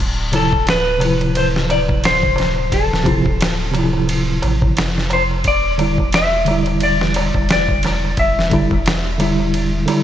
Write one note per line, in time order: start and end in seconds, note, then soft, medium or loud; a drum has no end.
0.00 2.70 D1 loud
0.32 0.54 C3 medium
0.32 0.55 F3 medium
0.32 0.56 E4 medium
0.32 0.69 A4 medium
0.32 ride medium
0.32 darbuka tek medium
0.53 kick medium
0.53 darbuka tek soft
0.67 1.33 B4 medium
0.67 snare loud
0.67 ride medium
0.67 darbuka tek soft
0.98 3.01 C3 medium
0.98 3.03 F3 medium
0.98 ride medium
0.98 darbuka tek medium
1.05 3.05 E4 medium
1.21 ride soft
1.21 darbuka tek soft
1.35 1.46 C5 medium
1.35 ride medium
1.35 darbuka tek soft
1.56 snare medium
1.70 1.80 D5 medium
1.70 ride medium
1.70 darbuka tek medium
1.88 kick medium
1.88 darbuka tek soft
2.03 2.75 C5 medium
2.03 snare loud
2.03 ride medium
2.03 darbuka tek soft
2.23 kick medium
2.23 darbuka dum medium
2.36 ride medium
2.36 darbuka tek medium
2.40 snare soft
2.56 darbuka tek medium
2.72 4.40 D1 loud
2.72 4.05 A4 medium
2.72 kick loud
2.72 ride medium
2.72 darbuka tek soft
2.93 snare soft
3.04 3.27 C3 medium
3.04 3.28 F3 medium
3.04 3.28 E4 medium
3.04 kick medium
3.04 ride medium
3.04 darbuka tek medium
3.04 darbuka dum medium
3.25 kick medium
3.25 darbuka tek soft
3.41 snare loud
3.41 ride medium
3.41 darbuka tek soft
3.71 5.42 C3 medium
3.71 5.43 F3 medium
3.71 ride medium
3.71 darbuka tek medium
3.78 5.45 E4 medium
3.93 darbuka tek medium
4.07 ride medium
4.07 darbuka tek soft
4.42 4.74 A1 medium
4.42 ride medium
4.42 darbuka tek loud
4.62 kick medium
4.62 darbuka tek soft
4.62 darbuka dum medium
4.77 5.43 F1 medium
4.77 snare loud
4.77 ride medium
4.77 darbuka tek soft
4.98 snare soft
5.10 5.22 C5 medium
5.10 ride medium
5.10 darbuka tek medium
5.31 darbuka tek medium
5.44 7.31 E1 loud
5.44 6.15 D5 medium
5.44 kick medium
5.44 ride medium
5.44 darbuka tek soft
5.78 6.00 D3 medium
5.78 6.01 G3 medium
5.78 6.02 E4 medium
5.78 ride medium
5.78 darbuka tek medium
5.98 kick medium
5.98 darbuka tek soft
6.12 6.62 E5 loud
6.12 snare loud
6.12 ride medium
6.12 darbuka tek soft
6.45 8.47 D3 medium
6.45 8.48 G3 medium
6.45 ride medium
6.45 darbuka tek medium
6.51 8.50 E4 medium
6.62 6.79 D5 loud
6.62 ride soft
6.67 darbuka tek soft
6.80 7.51 D5 medium
6.80 ride medium
6.80 darbuka tek soft
7.01 snare medium
7.14 ride medium
7.14 darbuka tek medium
7.34 8.15 E1 medium
7.34 kick medium
7.34 darbuka tek medium
7.49 8.21 D5 medium
7.49 snare loud
7.49 ride medium
7.49 darbuka tek soft
7.69 kick medium
7.69 darbuka dum medium
7.83 snare soft
7.83 ride medium
7.83 darbuka tek loud
8.05 darbuka tek soft
8.17 9.86 E1 loud
8.17 9.51 E5 medium
8.17 kick loud
8.17 ride medium
8.17 darbuka tek soft
8.39 snare soft
8.50 8.72 D3 medium
8.50 8.73 G3 medium
8.50 8.74 E4 loud
8.50 kick medium
8.50 ride medium
8.50 darbuka tek medium
8.50 darbuka dum medium
8.71 kick medium
8.71 darbuka tek medium
8.86 snare loud
8.86 ride medium
8.86 darbuka tek soft
9.18 9.84 D3 medium
9.18 9.85 G3 medium
9.18 9.86 E4 medium
9.18 ride medium
9.18 darbuka tek medium
9.40 darbuka tek soft
9.54 ride medium
9.54 darbuka tek soft
9.86 10.04 D3 medium
9.86 10.04 G3 medium
9.86 10.04 E4 loud
9.86 ride medium
9.86 darbuka tek loud